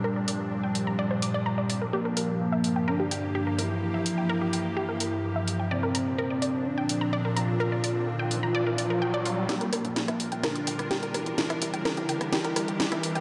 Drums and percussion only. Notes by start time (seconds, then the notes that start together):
0.28 open hi-hat
0.75 open hi-hat
1.22 open hi-hat
1.70 open hi-hat
2.17 open hi-hat
2.64 open hi-hat
3.11 open hi-hat
3.59 open hi-hat
4.06 open hi-hat
4.53 open hi-hat
5.00 open hi-hat
5.48 open hi-hat
5.95 open hi-hat
6.42 open hi-hat
6.89 open hi-hat
7.37 open hi-hat
7.84 open hi-hat
8.31 open hi-hat
8.78 open hi-hat
9.25 open hi-hat
9.49 snare, closed hi-hat
9.61 closed hi-hat
9.73 cross-stick, open hi-hat
9.85 closed hi-hat
9.96 snare, closed hi-hat
10.08 cross-stick, closed hi-hat
10.20 open hi-hat
10.32 closed hi-hat
10.44 cross-stick, snare, closed hi-hat
10.56 closed hi-hat
10.67 open hi-hat
10.79 cross-stick, closed hi-hat
10.91 snare, closed hi-hat
11.03 closed hi-hat
11.14 cross-stick, open hi-hat
11.26 closed hi-hat
11.38 snare, closed hi-hat
11.50 cross-stick, closed hi-hat
11.62 open hi-hat
11.74 closed hi-hat
11.85 cross-stick, snare, closed hi-hat
11.97 closed hi-hat
12.09 open hi-hat
12.21 cross-stick, closed hi-hat
12.33 snare, closed hi-hat
12.45 closed hi-hat
12.56 cross-stick, open hi-hat
12.68 closed hi-hat
12.80 snare, closed hi-hat
12.92 cross-stick, closed hi-hat
13.03 open hi-hat
13.15 closed hi-hat